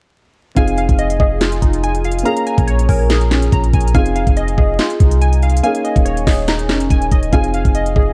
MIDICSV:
0, 0, Header, 1, 6, 480
1, 0, Start_track
1, 0, Key_signature, -4, "minor"
1, 0, Tempo, 422535
1, 643, Time_signature, 4, 2, 24, 8
1, 9236, End_track
2, 0, Start_track
2, 0, Title_t, "Synth pluck"
2, 0, Program_c, 0, 84
2, 644, Note_on_c, 0, 77, 104
2, 1320, Note_off_c, 0, 77, 0
2, 1361, Note_on_c, 0, 75, 77
2, 2038, Note_off_c, 0, 75, 0
2, 2564, Note_on_c, 0, 77, 105
2, 3240, Note_off_c, 0, 77, 0
2, 3281, Note_on_c, 0, 80, 84
2, 3959, Note_off_c, 0, 80, 0
2, 4482, Note_on_c, 0, 77, 99
2, 5159, Note_off_c, 0, 77, 0
2, 5202, Note_on_c, 0, 75, 86
2, 5879, Note_off_c, 0, 75, 0
2, 6404, Note_on_c, 0, 77, 106
2, 7080, Note_off_c, 0, 77, 0
2, 7120, Note_on_c, 0, 75, 82
2, 7798, Note_off_c, 0, 75, 0
2, 8323, Note_on_c, 0, 77, 102
2, 9000, Note_off_c, 0, 77, 0
2, 9041, Note_on_c, 0, 75, 78
2, 9236, Note_off_c, 0, 75, 0
2, 9236, End_track
3, 0, Start_track
3, 0, Title_t, "Synth keys"
3, 0, Program_c, 1, 88
3, 648, Note_on_c, 1, 80, 111
3, 887, Note_on_c, 1, 77, 92
3, 1122, Note_on_c, 1, 75, 88
3, 1363, Note_on_c, 1, 68, 83
3, 1603, Note_on_c, 1, 65, 99
3, 1836, Note_on_c, 1, 63, 84
3, 2072, Note_off_c, 1, 80, 0
3, 2086, Note_on_c, 1, 80, 94
3, 2314, Note_off_c, 1, 77, 0
3, 2328, Note_on_c, 1, 77, 93
3, 2560, Note_off_c, 1, 63, 0
3, 2560, Note_on_c, 1, 82, 111
3, 2562, Note_off_c, 1, 75, 0
3, 2563, Note_off_c, 1, 65, 0
3, 2563, Note_off_c, 1, 68, 0
3, 2564, Note_off_c, 1, 80, 0
3, 2565, Note_off_c, 1, 77, 0
3, 2803, Note_on_c, 1, 80, 88
3, 3038, Note_on_c, 1, 73, 95
3, 3283, Note_on_c, 1, 70, 85
3, 3518, Note_on_c, 1, 68, 88
3, 3762, Note_on_c, 1, 61, 83
3, 3993, Note_off_c, 1, 82, 0
3, 4007, Note_on_c, 1, 82, 88
3, 4232, Note_off_c, 1, 80, 0
3, 4246, Note_on_c, 1, 80, 87
3, 4470, Note_off_c, 1, 80, 0
3, 4480, Note_off_c, 1, 68, 0
3, 4480, Note_off_c, 1, 73, 0
3, 4482, Note_off_c, 1, 61, 0
3, 4483, Note_off_c, 1, 70, 0
3, 4483, Note_on_c, 1, 80, 114
3, 4485, Note_off_c, 1, 82, 0
3, 4720, Note_on_c, 1, 77, 91
3, 4965, Note_on_c, 1, 75, 90
3, 5201, Note_on_c, 1, 68, 86
3, 5446, Note_on_c, 1, 65, 83
3, 5681, Note_on_c, 1, 63, 80
3, 5909, Note_off_c, 1, 80, 0
3, 5923, Note_on_c, 1, 80, 94
3, 6153, Note_off_c, 1, 77, 0
3, 6166, Note_on_c, 1, 77, 91
3, 6385, Note_off_c, 1, 80, 0
3, 6399, Note_on_c, 1, 80, 109
3, 6402, Note_off_c, 1, 63, 0
3, 6402, Note_off_c, 1, 68, 0
3, 6404, Note_off_c, 1, 65, 0
3, 6404, Note_off_c, 1, 75, 0
3, 6404, Note_off_c, 1, 77, 0
3, 6638, Note_on_c, 1, 75, 79
3, 6876, Note_on_c, 1, 73, 89
3, 7125, Note_on_c, 1, 68, 78
3, 7362, Note_on_c, 1, 63, 91
3, 7597, Note_on_c, 1, 61, 77
3, 7832, Note_off_c, 1, 80, 0
3, 7846, Note_on_c, 1, 80, 99
3, 8072, Note_off_c, 1, 75, 0
3, 8086, Note_on_c, 1, 75, 84
3, 8315, Note_off_c, 1, 80, 0
3, 8320, Note_off_c, 1, 61, 0
3, 8320, Note_off_c, 1, 73, 0
3, 8322, Note_off_c, 1, 63, 0
3, 8324, Note_off_c, 1, 68, 0
3, 8324, Note_off_c, 1, 75, 0
3, 8329, Note_on_c, 1, 80, 112
3, 8567, Note_on_c, 1, 77, 90
3, 8802, Note_on_c, 1, 75, 90
3, 9043, Note_on_c, 1, 68, 85
3, 9236, Note_off_c, 1, 68, 0
3, 9236, Note_off_c, 1, 75, 0
3, 9236, Note_off_c, 1, 77, 0
3, 9236, Note_off_c, 1, 80, 0
3, 9236, End_track
4, 0, Start_track
4, 0, Title_t, "Grand piano"
4, 0, Program_c, 2, 0
4, 624, Note_on_c, 2, 60, 80
4, 636, Note_on_c, 2, 63, 79
4, 648, Note_on_c, 2, 65, 69
4, 659, Note_on_c, 2, 68, 89
4, 888, Control_c, 2, 64, 127
4, 2515, Note_off_c, 2, 60, 0
4, 2521, Note_off_c, 2, 63, 0
4, 2527, Note_off_c, 2, 65, 0
4, 2533, Note_off_c, 2, 68, 0
4, 2535, Note_on_c, 2, 58, 83
4, 2547, Note_on_c, 2, 61, 69
4, 2559, Note_on_c, 2, 65, 74
4, 2571, Note_on_c, 2, 68, 92
4, 2577, Control_c, 2, 64, 0
4, 2785, Control_c, 2, 64, 127
4, 4430, Note_off_c, 2, 58, 0
4, 4436, Note_off_c, 2, 61, 0
4, 4442, Note_off_c, 2, 65, 0
4, 4448, Note_off_c, 2, 68, 0
4, 4469, Note_on_c, 2, 60, 76
4, 4481, Note_on_c, 2, 63, 71
4, 4493, Note_on_c, 2, 65, 80
4, 4499, Control_c, 2, 64, 0
4, 4505, Note_on_c, 2, 68, 85
4, 4665, Control_c, 2, 64, 127
4, 6358, Note_off_c, 2, 60, 0
4, 6363, Note_off_c, 2, 63, 0
4, 6369, Note_off_c, 2, 65, 0
4, 6375, Note_off_c, 2, 68, 0
4, 6397, Note_on_c, 2, 58, 81
4, 6409, Note_on_c, 2, 61, 72
4, 6417, Control_c, 2, 64, 0
4, 6420, Note_on_c, 2, 63, 70
4, 6432, Note_on_c, 2, 68, 88
4, 6595, Control_c, 2, 64, 127
4, 8281, Note_off_c, 2, 58, 0
4, 8287, Note_off_c, 2, 61, 0
4, 8293, Note_off_c, 2, 63, 0
4, 8299, Note_off_c, 2, 68, 0
4, 8305, Note_on_c, 2, 60, 79
4, 8317, Note_on_c, 2, 63, 76
4, 8328, Note_on_c, 2, 65, 71
4, 8337, Control_c, 2, 64, 0
4, 8340, Note_on_c, 2, 68, 91
4, 8557, Control_c, 2, 64, 127
4, 9236, Note_off_c, 2, 60, 0
4, 9236, Note_off_c, 2, 63, 0
4, 9236, Note_off_c, 2, 65, 0
4, 9236, Note_off_c, 2, 68, 0
4, 9236, End_track
5, 0, Start_track
5, 0, Title_t, "808-style bass"
5, 0, Program_c, 3, 38
5, 642, Note_on_c, 3, 29, 114
5, 995, Note_off_c, 3, 29, 0
5, 1010, Note_on_c, 3, 29, 104
5, 1349, Note_off_c, 3, 29, 0
5, 1362, Note_on_c, 3, 29, 108
5, 1823, Note_off_c, 3, 29, 0
5, 1843, Note_on_c, 3, 29, 109
5, 2534, Note_off_c, 3, 29, 0
5, 2930, Note_on_c, 3, 34, 105
5, 3269, Note_off_c, 3, 34, 0
5, 3282, Note_on_c, 3, 34, 106
5, 3974, Note_off_c, 3, 34, 0
5, 4002, Note_on_c, 3, 34, 106
5, 4233, Note_off_c, 3, 34, 0
5, 4243, Note_on_c, 3, 34, 106
5, 4473, Note_off_c, 3, 34, 0
5, 4482, Note_on_c, 3, 29, 116
5, 4835, Note_off_c, 3, 29, 0
5, 4850, Note_on_c, 3, 29, 104
5, 5189, Note_off_c, 3, 29, 0
5, 5202, Note_on_c, 3, 29, 109
5, 5433, Note_off_c, 3, 29, 0
5, 5683, Note_on_c, 3, 36, 103
5, 6374, Note_off_c, 3, 36, 0
5, 6770, Note_on_c, 3, 27, 101
5, 7108, Note_off_c, 3, 27, 0
5, 7122, Note_on_c, 3, 27, 110
5, 7603, Note_on_c, 3, 29, 100
5, 7620, Note_off_c, 3, 27, 0
5, 7831, Note_off_c, 3, 29, 0
5, 7842, Note_on_c, 3, 27, 105
5, 8073, Note_off_c, 3, 27, 0
5, 8082, Note_on_c, 3, 27, 108
5, 8313, Note_off_c, 3, 27, 0
5, 8323, Note_on_c, 3, 29, 116
5, 8675, Note_off_c, 3, 29, 0
5, 8690, Note_on_c, 3, 29, 102
5, 9028, Note_off_c, 3, 29, 0
5, 9042, Note_on_c, 3, 29, 108
5, 9236, Note_off_c, 3, 29, 0
5, 9236, End_track
6, 0, Start_track
6, 0, Title_t, "Drums"
6, 642, Note_on_c, 9, 36, 115
6, 642, Note_on_c, 9, 42, 73
6, 756, Note_off_c, 9, 36, 0
6, 756, Note_off_c, 9, 42, 0
6, 768, Note_on_c, 9, 42, 67
6, 882, Note_off_c, 9, 42, 0
6, 882, Note_on_c, 9, 42, 68
6, 996, Note_off_c, 9, 42, 0
6, 1010, Note_on_c, 9, 36, 98
6, 1011, Note_on_c, 9, 42, 52
6, 1121, Note_off_c, 9, 42, 0
6, 1121, Note_on_c, 9, 42, 84
6, 1123, Note_off_c, 9, 36, 0
6, 1234, Note_off_c, 9, 42, 0
6, 1251, Note_on_c, 9, 42, 70
6, 1362, Note_on_c, 9, 36, 101
6, 1364, Note_off_c, 9, 42, 0
6, 1475, Note_off_c, 9, 36, 0
6, 1600, Note_on_c, 9, 42, 89
6, 1602, Note_on_c, 9, 38, 118
6, 1615, Note_on_c, 9, 39, 97
6, 1714, Note_off_c, 9, 42, 0
6, 1715, Note_off_c, 9, 38, 0
6, 1728, Note_on_c, 9, 42, 62
6, 1729, Note_off_c, 9, 39, 0
6, 1841, Note_off_c, 9, 42, 0
6, 1842, Note_on_c, 9, 42, 78
6, 1843, Note_on_c, 9, 36, 92
6, 1956, Note_off_c, 9, 36, 0
6, 1956, Note_off_c, 9, 42, 0
6, 1969, Note_on_c, 9, 42, 70
6, 2083, Note_off_c, 9, 42, 0
6, 2085, Note_on_c, 9, 42, 78
6, 2198, Note_off_c, 9, 42, 0
6, 2211, Note_on_c, 9, 42, 59
6, 2322, Note_off_c, 9, 42, 0
6, 2322, Note_on_c, 9, 42, 51
6, 2403, Note_off_c, 9, 42, 0
6, 2403, Note_on_c, 9, 42, 67
6, 2482, Note_off_c, 9, 42, 0
6, 2482, Note_on_c, 9, 42, 88
6, 2562, Note_off_c, 9, 42, 0
6, 2562, Note_on_c, 9, 42, 69
6, 2676, Note_off_c, 9, 42, 0
6, 2688, Note_on_c, 9, 42, 70
6, 2802, Note_off_c, 9, 42, 0
6, 2802, Note_on_c, 9, 42, 65
6, 2916, Note_off_c, 9, 42, 0
6, 2930, Note_on_c, 9, 36, 99
6, 2931, Note_on_c, 9, 42, 54
6, 3041, Note_off_c, 9, 42, 0
6, 3041, Note_on_c, 9, 42, 84
6, 3043, Note_off_c, 9, 36, 0
6, 3155, Note_off_c, 9, 42, 0
6, 3171, Note_on_c, 9, 42, 73
6, 3282, Note_on_c, 9, 36, 96
6, 3283, Note_on_c, 9, 46, 91
6, 3285, Note_off_c, 9, 42, 0
6, 3396, Note_off_c, 9, 36, 0
6, 3396, Note_off_c, 9, 46, 0
6, 3520, Note_on_c, 9, 42, 90
6, 3522, Note_on_c, 9, 38, 118
6, 3535, Note_on_c, 9, 39, 96
6, 3634, Note_off_c, 9, 42, 0
6, 3635, Note_off_c, 9, 38, 0
6, 3648, Note_on_c, 9, 42, 61
6, 3649, Note_off_c, 9, 39, 0
6, 3761, Note_off_c, 9, 42, 0
6, 3762, Note_on_c, 9, 38, 108
6, 3762, Note_on_c, 9, 42, 78
6, 3775, Note_on_c, 9, 39, 85
6, 3875, Note_off_c, 9, 38, 0
6, 3876, Note_off_c, 9, 42, 0
6, 3889, Note_off_c, 9, 39, 0
6, 3889, Note_on_c, 9, 42, 70
6, 4002, Note_on_c, 9, 36, 99
6, 4003, Note_off_c, 9, 42, 0
6, 4004, Note_on_c, 9, 42, 77
6, 4116, Note_off_c, 9, 36, 0
6, 4118, Note_off_c, 9, 42, 0
6, 4131, Note_on_c, 9, 42, 59
6, 4242, Note_off_c, 9, 42, 0
6, 4242, Note_on_c, 9, 36, 107
6, 4242, Note_on_c, 9, 42, 50
6, 4322, Note_off_c, 9, 42, 0
6, 4322, Note_on_c, 9, 42, 68
6, 4356, Note_off_c, 9, 36, 0
6, 4402, Note_off_c, 9, 42, 0
6, 4402, Note_on_c, 9, 42, 88
6, 4482, Note_off_c, 9, 42, 0
6, 4482, Note_on_c, 9, 36, 121
6, 4482, Note_on_c, 9, 42, 75
6, 4595, Note_off_c, 9, 42, 0
6, 4596, Note_off_c, 9, 36, 0
6, 4608, Note_on_c, 9, 42, 66
6, 4722, Note_off_c, 9, 42, 0
6, 4722, Note_on_c, 9, 42, 69
6, 4836, Note_off_c, 9, 42, 0
6, 4850, Note_on_c, 9, 36, 99
6, 4850, Note_on_c, 9, 42, 53
6, 4961, Note_off_c, 9, 42, 0
6, 4961, Note_on_c, 9, 42, 84
6, 4963, Note_off_c, 9, 36, 0
6, 5075, Note_off_c, 9, 42, 0
6, 5091, Note_on_c, 9, 42, 69
6, 5202, Note_on_c, 9, 36, 100
6, 5204, Note_off_c, 9, 42, 0
6, 5316, Note_off_c, 9, 36, 0
6, 5441, Note_on_c, 9, 42, 89
6, 5442, Note_on_c, 9, 38, 117
6, 5456, Note_on_c, 9, 39, 96
6, 5554, Note_off_c, 9, 42, 0
6, 5556, Note_off_c, 9, 38, 0
6, 5568, Note_on_c, 9, 42, 62
6, 5569, Note_off_c, 9, 39, 0
6, 5681, Note_off_c, 9, 42, 0
6, 5682, Note_on_c, 9, 42, 75
6, 5683, Note_on_c, 9, 36, 94
6, 5796, Note_off_c, 9, 42, 0
6, 5797, Note_off_c, 9, 36, 0
6, 5809, Note_on_c, 9, 42, 70
6, 5923, Note_off_c, 9, 42, 0
6, 5925, Note_on_c, 9, 42, 79
6, 6039, Note_off_c, 9, 42, 0
6, 6051, Note_on_c, 9, 42, 60
6, 6162, Note_off_c, 9, 42, 0
6, 6162, Note_on_c, 9, 42, 50
6, 6243, Note_off_c, 9, 42, 0
6, 6243, Note_on_c, 9, 42, 67
6, 6323, Note_off_c, 9, 42, 0
6, 6323, Note_on_c, 9, 42, 88
6, 6402, Note_off_c, 9, 42, 0
6, 6402, Note_on_c, 9, 42, 72
6, 6516, Note_off_c, 9, 42, 0
6, 6528, Note_on_c, 9, 42, 70
6, 6642, Note_off_c, 9, 42, 0
6, 6642, Note_on_c, 9, 42, 68
6, 6756, Note_off_c, 9, 42, 0
6, 6770, Note_on_c, 9, 36, 94
6, 6771, Note_on_c, 9, 42, 52
6, 6881, Note_off_c, 9, 42, 0
6, 6881, Note_on_c, 9, 42, 84
6, 6883, Note_off_c, 9, 36, 0
6, 6994, Note_off_c, 9, 42, 0
6, 7011, Note_on_c, 9, 42, 70
6, 7122, Note_on_c, 9, 36, 99
6, 7122, Note_on_c, 9, 46, 90
6, 7123, Note_on_c, 9, 38, 101
6, 7124, Note_off_c, 9, 42, 0
6, 7137, Note_on_c, 9, 39, 80
6, 7236, Note_off_c, 9, 36, 0
6, 7236, Note_off_c, 9, 46, 0
6, 7237, Note_off_c, 9, 38, 0
6, 7251, Note_off_c, 9, 39, 0
6, 7360, Note_on_c, 9, 42, 88
6, 7362, Note_on_c, 9, 38, 119
6, 7375, Note_on_c, 9, 39, 99
6, 7474, Note_off_c, 9, 42, 0
6, 7475, Note_off_c, 9, 38, 0
6, 7488, Note_on_c, 9, 42, 63
6, 7489, Note_off_c, 9, 39, 0
6, 7601, Note_off_c, 9, 42, 0
6, 7601, Note_on_c, 9, 38, 108
6, 7602, Note_on_c, 9, 42, 76
6, 7615, Note_on_c, 9, 39, 85
6, 7715, Note_off_c, 9, 38, 0
6, 7716, Note_off_c, 9, 42, 0
6, 7729, Note_off_c, 9, 39, 0
6, 7729, Note_on_c, 9, 42, 71
6, 7842, Note_off_c, 9, 42, 0
6, 7842, Note_on_c, 9, 36, 101
6, 7844, Note_on_c, 9, 42, 77
6, 7956, Note_off_c, 9, 36, 0
6, 7958, Note_off_c, 9, 42, 0
6, 7971, Note_on_c, 9, 42, 58
6, 8082, Note_off_c, 9, 42, 0
6, 8082, Note_on_c, 9, 36, 101
6, 8082, Note_on_c, 9, 42, 81
6, 8196, Note_off_c, 9, 36, 0
6, 8196, Note_off_c, 9, 42, 0
6, 8209, Note_on_c, 9, 42, 47
6, 8322, Note_off_c, 9, 42, 0
6, 8322, Note_on_c, 9, 36, 117
6, 8322, Note_on_c, 9, 42, 74
6, 8435, Note_off_c, 9, 42, 0
6, 8436, Note_off_c, 9, 36, 0
6, 8448, Note_on_c, 9, 42, 67
6, 8562, Note_off_c, 9, 42, 0
6, 8562, Note_on_c, 9, 42, 66
6, 8676, Note_off_c, 9, 42, 0
6, 8690, Note_on_c, 9, 36, 95
6, 8691, Note_on_c, 9, 42, 53
6, 8801, Note_off_c, 9, 42, 0
6, 8801, Note_on_c, 9, 42, 81
6, 8804, Note_off_c, 9, 36, 0
6, 8914, Note_off_c, 9, 42, 0
6, 8931, Note_on_c, 9, 42, 70
6, 9042, Note_on_c, 9, 36, 100
6, 9044, Note_off_c, 9, 42, 0
6, 9156, Note_off_c, 9, 36, 0
6, 9236, End_track
0, 0, End_of_file